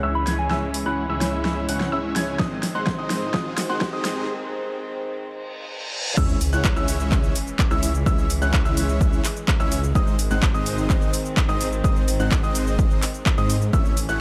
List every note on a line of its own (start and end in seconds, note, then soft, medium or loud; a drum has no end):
0.00 0.25 C#2 medium
0.00 2.36 E3 medium
0.00 2.36 G#3 medium
0.00 0.24 G#3 medium
0.00 2.36 C#4 medium
0.00 0.24 C#4 medium
0.00 0.24 E4 medium
0.00 0.24 C#5 medium
0.00 0.24 E5 loud
0.00 0.24 E6 medium
0.00 riser medium
0.15 0.29 B5 medium
0.27 0.48 C#2 medium
0.27 0.48 G#3 medium
0.27 0.48 C#4 medium
0.27 0.48 E4 medium
0.27 0.48 C#5 medium
0.27 0.48 G#5 medium
0.27 0.48 G#6 medium
0.27 snare medium
0.27 open hi-hat medium
0.39 0.46 G#5 medium
0.50 0.84 C#2 loud
0.50 0.69 G#3 medium
0.50 0.69 C#4 medium
0.50 0.69 E4 medium
0.50 0.69 C#5 medium
0.50 0.69 E5 loud
0.50 0.58 G#5 medium
0.50 0.69 E6 loud
0.50 snare medium
0.74 open hi-hat loud
0.86 1.07 C#2 medium
0.86 1.05 G#3 medium
0.86 1.05 C#4 medium
0.86 1.05 E4 medium
0.86 1.05 C#5 medium
0.86 1.05 F#5 medium
0.86 1.52 B5 medium
0.86 1.05 F#6 medium
1.09 1.66 C#2 medium
1.09 1.66 G#3 medium
1.09 1.66 C#4 medium
1.09 1.66 E4 medium
1.09 1.66 C#5 medium
1.09 1.66 E5 loud
1.09 1.66 E6 medium
1.21 snare medium
1.21 open hi-hat medium
1.45 snare medium
1.69 1.90 C#2 loud
1.69 1.89 G#3 medium
1.69 1.89 C#4 medium
1.69 1.89 E4 medium
1.69 1.89 C#5 medium
1.69 1.89 F#5 medium
1.69 1.89 F#6 medium
1.69 open hi-hat loud
1.80 snare medium
1.92 2.13 C#2 loud
1.92 2.13 G#3 medium
1.92 2.13 C#4 medium
1.92 2.13 E4 medium
1.92 2.13 C#5 medium
1.92 2.13 E5 loud
1.92 2.13 E6 medium
2.16 2.37 C#2 medium
2.16 2.37 G#3 medium
2.16 2.37 C#4 medium
2.16 2.37 E4 medium
2.16 2.37 C#5 medium
2.16 2.37 G#5 medium
2.16 2.37 G#6 medium
2.16 snare medium
2.16 open hi-hat medium
2.39 2.73 G#1 loud
2.39 6.14 D#3 medium
2.39 2.58 G#3 medium
2.39 6.14 G#3 medium
2.39 2.58 C4 medium
2.39 6.14 C4 medium
2.39 2.58 D#4 medium
2.39 2.58 C5 medium
2.39 2.58 D#5 medium
2.39 2.58 D#6 medium
2.39 kick loud
2.39 snare medium
2.63 snare medium
2.63 open hi-hat loud
2.75 2.96 G#1 medium
2.75 2.94 G#3 medium
2.75 2.94 C4 medium
2.75 2.94 D#4 medium
2.75 2.94 C5 medium
2.75 2.94 F#5 medium
2.75 3.32 C6 medium
2.75 2.94 F#6 medium
2.87 kick loud
2.87 snare medium
2.98 3.32 G#1 medium
2.98 3.32 G#3 medium
2.98 3.32 C4 medium
2.98 3.32 D#4 medium
2.98 3.32 C5 medium
2.98 3.32 D#5 medium
2.98 3.32 D#6 medium
3.10 snare medium
3.10 open hi-hat medium
3.34 3.67 G#1 loud
3.34 3.53 G#3 medium
3.34 3.53 C4 medium
3.34 3.53 D#4 medium
3.34 3.53 C5 medium
3.34 3.53 D#5 loud
3.34 3.53 D#6 medium
3.34 kick loud
3.34 snare medium
3.58 snare medium
3.58 open hi-hat loud
3.69 3.91 G#1 loud
3.69 3.88 G#3 medium
3.69 3.88 C4 medium
3.69 3.88 D#4 medium
3.69 3.88 C5 medium
3.69 3.88 F#5 medium
3.69 4.27 C6 medium
3.69 3.88 F#6 medium
3.81 kick loud
3.81 snare medium
3.93 4.26 G#1 loud
3.93 4.27 G#3 medium
3.93 4.27 C4 medium
3.93 4.27 D#4 medium
3.93 4.27 C5 medium
3.93 4.27 D#5 medium
3.93 4.27 D#6 medium
4.05 snare medium
4.05 open hi-hat loud
5.23 reverse cymbal medium
6.17 6.50 C#2 loud
6.17 9.92 E3 medium
6.17 6.36 G#3 medium
6.17 13.69 G#3 medium
6.17 6.36 C#4 medium
6.17 8.04 C#4 medium
6.17 6.36 E4 medium
6.17 6.36 C#5 medium
6.17 6.36 E5 loud
6.17 6.36 E6 loud
6.17 kick loud
6.17 crash loud
6.17 sub drop medium
6.17 shaker soft
6.29 shaker soft
6.41 open hi-hat loud
6.41 shaker medium
6.53 6.74 C#2 loud
6.53 6.72 G#3 medium
6.53 6.72 C#4 medium
6.53 6.72 E4 medium
6.53 6.72 C#5 medium
6.53 6.72 F#5 medium
6.53 6.72 F#6 medium
6.53 shaker soft
6.65 kick loud
6.65 clap loud
6.65 shaker soft
6.76 7.30 C#2 loud
6.76 7.33 G#3 medium
6.76 7.33 C#4 medium
6.76 7.33 E4 medium
6.76 7.33 C#5 medium
6.76 7.33 E5 loud
6.76 7.33 E6 medium
6.76 shaker soft
6.88 open hi-hat loud
6.88 shaker medium
7.00 shaker soft
7.12 kick loud
7.12 clap medium
7.12 shaker soft
7.24 shaker soft
7.35 open hi-hat loud
7.35 shaker medium
7.47 shaker soft
7.59 kick loud
7.59 clap loud
7.59 shaker soft
7.71 8.04 C#2 loud
7.71 7.90 G#3 loud
7.71 7.90 C#4 medium
7.71 7.90 E4 medium
7.71 7.90 C#5 medium
7.71 7.90 E5 loud
7.71 7.90 E6 loud
7.71 shaker soft
7.83 open hi-hat loud
7.83 shaker medium
7.95 shaker soft
8.06 8.39 C#2 loud
8.06 8.25 G#3 medium
8.06 8.25 C#4 medium
8.06 8.25 E4 medium
8.06 8.25 C#5 medium
8.06 8.25 E5 loud
8.06 8.25 E6 loud
8.06 kick loud
8.06 shaker soft
8.18 shaker soft
8.30 open hi-hat loud
8.30 shaker medium
8.42 8.63 C#2 loud
8.42 8.60 G#3 medium
8.42 8.60 C#4 medium
8.42 8.60 E4 medium
8.42 8.60 C#5 medium
8.42 8.60 F#5 medium
8.42 8.61 F#6 medium
8.42 shaker soft
8.54 kick loud
8.54 clap loud
8.54 shaker soft
8.65 9.19 C#2 medium
8.65 9.22 G#3 medium
8.65 9.22 C#4 medium
8.65 9.22 E4 medium
8.65 9.22 C#5 medium
8.65 9.22 E5 loud
8.65 9.22 E6 medium
8.65 shaker soft
8.77 open hi-hat loud
8.77 shaker medium
8.89 shaker soft
9.01 kick loud
9.01 shaker soft
9.13 shaker soft
9.24 clap medium
9.24 open hi-hat loud
9.24 shaker medium
9.37 shaker soft
9.48 kick loud
9.48 clap loud
9.48 shaker soft
9.60 9.93 C#2 loud
9.60 9.79 G#3 loud
9.60 9.79 C#4 medium
9.60 9.79 E4 medium
9.60 9.79 C#5 medium
9.60 9.79 E5 loud
9.60 9.79 E6 loud
9.60 shaker soft
9.72 open hi-hat loud
9.72 shaker medium
9.84 shaker soft
9.95 10.28 G#1 loud
9.95 13.70 D#3 medium
9.95 10.14 G#3 medium
9.95 13.70 C4 medium
9.95 10.14 C4 medium
9.95 10.14 D#4 medium
9.95 10.14 C5 medium
9.95 10.14 D#5 loud
9.95 10.14 D#6 loud
9.95 kick loud
9.95 shaker soft
10.07 shaker soft
10.19 open hi-hat loud
10.19 shaker medium
10.31 10.52 G#1 loud
10.31 10.49 G#3 medium
10.31 10.50 C4 medium
10.31 10.50 D#4 medium
10.31 10.50 C5 medium
10.31 10.50 F#5 medium
10.31 10.50 F#6 medium
10.31 shaker soft
10.43 kick loud
10.43 clap loud
10.43 shaker soft
10.54 11.08 G#1 loud
10.54 11.11 G#3 medium
10.54 11.11 C4 medium
10.54 11.11 D#4 medium
10.54 11.11 C5 medium
10.54 11.11 D#5 loud
10.54 11.11 D#6 medium
10.54 shaker soft
10.66 open hi-hat loud
10.66 shaker medium
10.78 shaker soft
10.90 kick loud
10.90 clap medium
10.90 shaker soft
11.02 shaker soft
11.13 open hi-hat loud
11.13 shaker medium
11.25 shaker soft
11.37 kick loud
11.37 clap loud
11.37 shaker soft
11.49 11.82 G#1 loud
11.49 11.68 G#3 loud
11.49 11.68 C4 medium
11.49 11.68 D#4 medium
11.49 11.68 C5 medium
11.49 11.68 D#5 loud
11.49 11.68 D#6 loud
11.49 shaker soft
11.61 open hi-hat loud
11.61 shaker medium
11.73 shaker soft
11.84 12.17 G#1 loud
11.84 12.03 G#3 medium
11.84 12.03 C4 medium
11.84 12.03 D#4 medium
11.84 12.03 C5 medium
11.84 12.03 D#5 loud
11.84 12.03 D#6 loud
11.84 kick loud
11.84 shaker soft
11.96 shaker soft
12.08 open hi-hat loud
12.08 shaker medium
12.20 12.41 G#1 loud
12.20 12.38 G#3 medium
12.20 12.38 C4 medium
12.20 12.39 D#4 medium
12.20 12.38 C5 medium
12.20 12.38 F#5 medium
12.20 12.38 F#6 medium
12.20 shaker soft
12.31 kick loud
12.31 clap loud
12.31 shaker soft
12.43 12.97 G#1 medium
12.43 13.00 G#3 medium
12.43 13.00 C4 medium
12.43 13.00 D#4 medium
12.43 13.00 C5 medium
12.43 13.00 D#5 loud
12.43 13.00 D#6 medium
12.43 shaker soft
12.55 open hi-hat loud
12.55 shaker medium
12.67 shaker soft
12.79 kick loud
12.79 shaker soft
12.91 shaker soft
13.02 clap medium
13.02 open hi-hat loud
13.02 shaker medium
13.14 shaker soft
13.26 kick loud
13.26 clap loud
13.26 shaker soft
13.38 13.71 G#2 loud
13.38 13.57 G#3 loud
13.38 13.57 C4 medium
13.38 13.57 D#4 medium
13.38 13.57 C5 medium
13.38 13.57 D#5 loud
13.38 13.57 D#6 loud
13.38 shaker soft
13.50 open hi-hat loud
13.50 shaker medium
13.62 shaker soft
13.73 14.06 A1 loud
13.73 14.21 E3 medium
13.73 14.21 A3 medium
13.73 13.92 A3 medium
13.73 14.21 C#4 medium
13.73 13.92 C#4 medium
13.73 13.92 E4 medium
13.73 13.92 C#5 medium
13.73 13.92 E5 loud
13.73 13.92 E6 loud
13.73 kick loud
13.73 shaker soft
13.85 shaker soft
13.97 open hi-hat loud
13.97 shaker medium
14.09 14.21 A1 loud
14.09 14.21 A3 medium
14.09 14.21 C#4 medium
14.09 14.21 E4 medium
14.09 14.21 C#5 medium
14.09 14.21 F#5 medium
14.09 14.21 F#6 medium
14.09 shaker soft